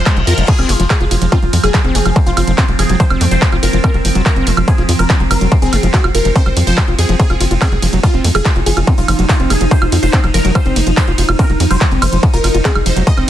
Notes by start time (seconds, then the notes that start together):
Already playing: F3 F4 C5, reverse cymbal
0.06 G#3, kick, clap, closed hi-hat, high woodblock
0.17 F1 F3, closed hi-hat
0.27 F2 F4 A#4, open hi-hat
0.38 F1 F3, closed hi-hat
0.48 F3 C4 G#4, kick, closed hi-hat, crash, ride
0.59 F1 C4, closed hi-hat, high woodblock
0.69 F#1 G#3, open hi-hat, ride
0.80 F1 F3, closed hi-hat
0.90 F3 G#4, kick, clap, closed hi-hat, ride, high woodblock
1.01 F1 F4, closed hi-hat
1.11 F1 F4, open hi-hat, ride
1.22 F1 F3, closed hi-hat
1.32 C4 F4, kick, closed hi-hat, ride, high woodblock
1.43 F1 F#3, closed hi-hat
1.53 F2 F3, open hi-hat, ride
1.64 F1 F#3 G#4, closed hi-hat, high woodblock
1.74 F3, kick, clap, closed hi-hat, ride
1.85 F1 C4, closed hi-hat
1.95 F#1 G#3 G#4, open hi-hat, ride
2.06 F1 F3, closed hi-hat, high woodblock
2.16 F3, kick, closed hi-hat, ride
2.27 F1 F4, closed hi-hat
2.37 F#1 F4, open hi-hat, ride, high woodblock
2.47 F1 F3, closed hi-hat
2.58 C4 F4, kick, clap, closed hi-hat, ride
2.68 F1 F#3, closed hi-hat
2.79 F1 F3 G#4, open hi-hat, ride, high woodblock
2.89 F1 F#3, closed hi-hat
3.00 F3 C5, kick, closed hi-hat, ride
3.10 F1 C4, closed hi-hat, high woodblock
3.21 F2 G#3, open hi-hat, ride
3.31 F1 F3 C5, closed hi-hat
3.42 F3, kick, clap, closed hi-hat, ride
3.52 F1 F4, closed hi-hat, high woodblock
3.63 F#1 F4 A#4, open hi-hat, ride
3.73 F1 F3, closed hi-hat
3.84 C4 A#4, kick, closed hi-hat, ride, high woodblock
3.94 F1 F#3, closed hi-hat
4.05 F#1 F3, open hi-hat, ride
4.15 F1 F#3, closed hi-hat
4.26 F3 A#4, kick, clap, closed hi-hat, ride, high woodblock
4.36 F1 C4, closed hi-hat
4.47 F1 G#3, open hi-hat, ride
4.57 F1 F3, closed hi-hat, high woodblock
4.68 F3 G#4, kick, closed hi-hat, ride
4.78 F1 F4, closed hi-hat
4.89 F2 F4, open hi-hat, ride
4.99 F1 F3 A#4, closed hi-hat, high woodblock
5.10 C4, kick, clap, closed hi-hat, ride
5.20 F1 F#3, closed hi-hat
5.31 F#1 F3 A#4, open hi-hat, ride, high woodblock
5.41 F1 F#3, closed hi-hat
5.52 F3, kick, closed hi-hat, ride
5.62 F1 C4 G#4, closed hi-hat
5.73 F#1 G#3, open hi-hat, ride, high woodblock
5.83 F1 F3, closed hi-hat
5.94 F3 F#4, kick, clap, closed hi-hat, ride
6.04 F1 F4, closed hi-hat, high woodblock
6.15 F1 F4 A#4, open hi-hat, ride
6.25 F1 F3, closed hi-hat
6.36 C4 C5, kick, closed hi-hat, ride
6.46 F1 F#3, closed hi-hat, high woodblock
6.57 F2 F3, open hi-hat, ride
6.67 F1 F3 C5, closed hi-hat
6.78 F#3, kick, clap, closed hi-hat, ride, high woodblock
6.88 F1 F4, closed hi-hat
6.99 F2 G#4, open hi-hat, ride
7.09 F1 F3, closed hi-hat
7.20 F3 D#4 G#4, kick, closed hi-hat, ride
7.30 F1 F4, closed hi-hat, high woodblock
7.40 F#1 F4, open hi-hat, ride
7.51 F1 F4, closed hi-hat
7.61 C4 G#4, kick, clap, closed hi-hat, ride, high woodblock
7.72 F1 F#3, closed hi-hat
7.82 F1 F3, open hi-hat, ride
7.93 F1 F#3, closed hi-hat
8.03 F3 F4, kick, closed hi-hat, ride, high woodblock
8.14 F1 C4, closed hi-hat
8.24 F2 G#3, open hi-hat, ride
8.35 F1 F3 G#4, closed hi-hat, high woodblock
8.45 F3, kick, clap, closed hi-hat, ride
8.56 F1 F4, closed hi-hat
8.66 F#1 F4 G#4, open hi-hat, ride
8.77 F1 F4, closed hi-hat, high woodblock
8.87 C4, kick, closed hi-hat, ride
8.98 F1 F#3 F4, closed hi-hat
9.08 F#1 F3, open hi-hat, ride, high woodblock
9.19 F1 F#3, closed hi-hat
9.29 F3 F4, kick, clap, closed hi-hat, ride
9.40 F1 C4, closed hi-hat
9.50 F1 G#3 G#4, open hi-hat, ride, high woodblock
9.61 F1 F3, closed hi-hat
9.71 F3 C5, kick, closed hi-hat, ride
9.82 F1 F4, closed hi-hat, high woodblock
9.92 F2 F4, open hi-hat, ride
10.03 F1 F4 C5, closed hi-hat
10.13 C4, kick, clap, closed hi-hat, ride
10.24 F1 F#3, closed hi-hat, high woodblock
10.34 F#1 F3 A#4, open hi-hat, ride
10.45 F1 F#3, closed hi-hat
10.55 F3 C5, kick, closed hi-hat, ride, high woodblock
10.66 F1 C4, closed hi-hat
10.76 F#1 G#3, open hi-hat, ride
10.87 F1 F3, closed hi-hat
10.97 F3 C5, kick, clap, closed hi-hat, ride, high woodblock
11.08 F1 F4, closed hi-hat
11.18 F1 F4, open hi-hat, ride
11.29 F1 F4, closed hi-hat, high woodblock
11.39 C4 A#4, kick, closed hi-hat, ride
11.50 F1 F#3, closed hi-hat
11.60 F2 F3, open hi-hat, ride
11.71 F1 F#3 C5, closed hi-hat, high woodblock
11.81 F3, kick, clap, closed hi-hat, ride
11.92 F1 C4, closed hi-hat
12.02 F#1 G#3 C5, open hi-hat, ride, high woodblock
12.13 F1 F3, closed hi-hat
12.23 F3, kick, closed hi-hat, ride
12.34 F1 F4 A#4, closed hi-hat
12.44 F#1 F4, open hi-hat, ride, high woodblock
12.54 F1 F4, closed hi-hat
12.65 C4 G#4, kick, clap, closed hi-hat, ride
12.75 F1 F#3, closed hi-hat, high woodblock
12.86 F1 F3 C5, open hi-hat, ride
12.96 F1 F#3, closed hi-hat
13.07 F3 D#5, kick, closed hi-hat, ride
13.17 F1 C4, closed hi-hat, high woodblock